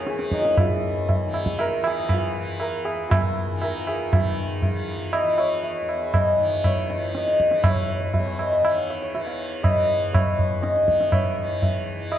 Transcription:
Already playing: E2 D#3 E3 F4 A#4 C#5 D#5
0.07 G#4, tabla te
0.13 E3
0.19 tabla te
0.32 D#4, tabla ke
0.36 E3 F3
0.43 G#3 A#3, tabla te
0.50 C#4 D#4
0.55 E4, tabla na, tabla ge
0.59 F4
0.69 E2
1.09 tabla tin, tabla ge
1.25 D#3
1.34 tabla na
1.46 tabla ke
1.59 A#4, tabla na
1.81 E3, tabla na
1.87 G#4
2.09 F4, tabla na, tabla ge
2.38 E3
2.60 A#4, tabla na
2.85 G#4, tabla na
2.95 E2
3.10 F4, tabla na, tabla ge
3.52 D#3
3.62 A#4, tabla na
3.87 G#4, tabla na
4.13 D#3 F4, tabla na, tabla ge
4.62 tabla tin, tabla ge
4.70 E3
5.13 D#5, tabla na
5.25 E3
5.38 C#5, tabla na
5.63 tabla tin
5.81 E2
5.89 tabla na
6.14 D#5, tabla na, tabla ge
6.38 D#3
6.64 C#5, tabla na, tabla ge
6.90 E3, tabla te
7.15 D#5, tabla te
7.28 tabla te
7.40 tabla ke
7.50 E3, tabla te
7.64 tabla na, tabla ge
7.68 C#5
7.74 C#5
7.81 C#5
7.87 C#5
7.94 C#5
8.00 C#5
8.07 E2 C#5
8.14 C#5, tabla tin, tabla ge
8.20 C#5
8.26 C#5
8.39 D#5, tabla na
8.52 E5
8.62 D#3, tabla na
8.78 F5
8.90 E5
9.02 C#5
9.15 E3, tabla tin
9.27 F5
9.63 D#5, tabla na, tabla ge
9.71 E3
10.13 C#5, tabla na, tabla ge
10.27 E2
10.39 tabla ge
10.62 D#5, tabla te
10.76 tabla te
10.83 D#3
10.88 tabla ke
11.01 tabla te
11.07 D#5
11.12 C#5, tabla na, tabla ge
11.38 E3
11.62 tabla tin, tabla ge
11.94 E3
12.12 D#5, tabla na

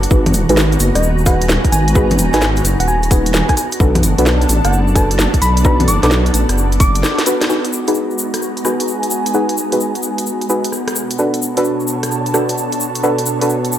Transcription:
Already playing: D4 F#4 A5
0.03 closed hi-hat, shaker
0.11 G#1 D#4 F#4 G#4 B4 A#5, kick, shaker
0.21 B3
0.26 closed hi-hat, high conga, shaker
0.33 D#1, open hi-hat, shaker
0.49 G#1 D#4 F#4 G#4 B4, closed hi-hat, shaker
0.57 snare, shaker
0.72 closed hi-hat, shaker
0.80 F#1, open hi-hat, shaker
0.95 D#1 D#5, cross-stick, closed hi-hat, shaker
1.03 shaker
1.13 G#5
1.18 shaker
1.26 D#4 F#4 G#4 B4 F#5, kick, cross-stick, open hi-hat, shaker
1.41 closed hi-hat, shaker
1.49 snare, shaker
1.65 kick, closed hi-hat, shaker
1.72 G#1 G#5, open hi-hat, shaker
1.88 closed hi-hat, shaker
1.95 D#4 F#4 G#4 B4, kick, shaker
2.10 closed hi-hat, high conga, shaker
2.18 D#1, open hi-hat, shaker
2.33 G#1 D#4 F#4 G#4 B4 G#5, snare, closed hi-hat, shaker
2.42 snare, shaker
2.56 closed hi-hat, shaker
2.65 F#1, open hi-hat, shaker
2.80 D#1 F#5, closed hi-hat, shaker
2.88 G#5, shaker
3.03 closed hi-hat, shaker
3.11 D#4 F#4 G#4 B4, kick, open hi-hat, shaker
3.26 closed hi-hat, shaker
3.34 cross-stick, snare, shaker
3.49 G#5, kick, cross-stick, closed hi-hat, shaker
3.57 D4 A4 D5 G#5, open hi-hat, shaker
3.72 closed hi-hat, shaker
3.79 B1 D4 F#4 A4 B4 A5, kick, shaker
3.95 closed hi-hat, high conga, shaker
4.03 F#1, open hi-hat, shaker
4.18 B1 D4 F#4 A4 B4, closed hi-hat, shaker
4.26 snare, shaker
4.42 closed hi-hat, shaker
4.49 A1, open hi-hat, shaker
4.65 F#1 F#5, cross-stick, closed hi-hat, shaker
4.73 shaker
4.88 shaker
4.95 D4 F#4 A4 B4 A5, kick, cross-stick, open hi-hat, shaker
5.11 closed hi-hat, shaker
5.19 snare, shaker
5.34 kick, closed hi-hat, shaker
5.42 B1 B5, open hi-hat, shaker
5.57 closed hi-hat, shaker
5.64 D4 F#4 A4 B4 B5, kick, shaker
5.80 closed hi-hat, high conga, shaker
5.88 F#1 D6, open hi-hat, shaker
6.03 B1 D4 F#4 A4 B4 D6, snare, closed hi-hat, shaker
6.11 snare, shaker
6.26 closed hi-hat, shaker
6.34 A1, open hi-hat, shaker
6.49 F#1, cross-stick, closed hi-hat, shaker
6.58 shaker
6.72 closed hi-hat, shaker
6.80 D6, kick, open hi-hat, shaker
6.95 closed hi-hat, shaker
7.03 snare, shaker
7.19 snare, closed hi-hat, shaker
7.26 D4 F#4 A4 B4, open hi-hat, shaker
7.41 snare, closed hi-hat, shaker
7.49 G#3 D#4 F#4 G#4 B4 A#5, shaker
7.65 closed hi-hat, shaker
7.73 shaker
7.88 D#4 F#4 G#4 B4, closed hi-hat, shaker
7.95 shaker
8.11 shaker
8.18 shaker
8.34 cross-stick, closed hi-hat, shaker
8.42 G#5, shaker
8.57 closed hi-hat, shaker
8.65 D#4 F#4 G#4 B4, cross-stick, shaker
8.80 closed hi-hat, shaker
8.88 shaker
9.03 closed hi-hat, shaker
9.10 shaker
9.26 closed hi-hat, shaker
9.34 D#4 F#4 G#4 B4, shaker
9.49 closed hi-hat, shaker
9.57 shaker
9.72 D#4 F#4 G#4 B4, closed hi-hat, shaker
9.80 shaker
9.95 closed hi-hat, shaker
10.03 shaker
10.18 closed hi-hat, shaker
10.26 shaker
10.41 closed hi-hat, shaker
10.49 D#4 F#4 G#4 B4, shaker
10.64 closed hi-hat, shaker
10.72 cross-stick, shaker
10.88 cross-stick, closed hi-hat, shaker
10.95 B2 D4 A4 C#5, shaker
11.11 closed hi-hat, shaker
11.18 D4 F#4 A4 B4, shaker
11.34 closed hi-hat, shaker
11.41 A5, shaker
11.57 D4 F#4 A4 B4, closed hi-hat, shaker
11.65 shaker
11.80 shaker
11.87 shaker
12.03 cross-stick, closed hi-hat, shaker
12.11 shaker
12.26 closed hi-hat, shaker
12.34 D4 F#4 A4 B4, cross-stick, shaker
12.49 closed hi-hat, shaker
12.58 shaker
12.72 closed hi-hat, shaker
12.80 shaker
12.95 closed hi-hat, shaker
13.03 D4 F#4 A4 B4, shaker
13.18 closed hi-hat, shaker
13.26 shaker
13.41 D4 F#4 A4 B4, closed hi-hat, shaker
13.49 shaker
13.65 closed hi-hat, shaker
13.72 shaker

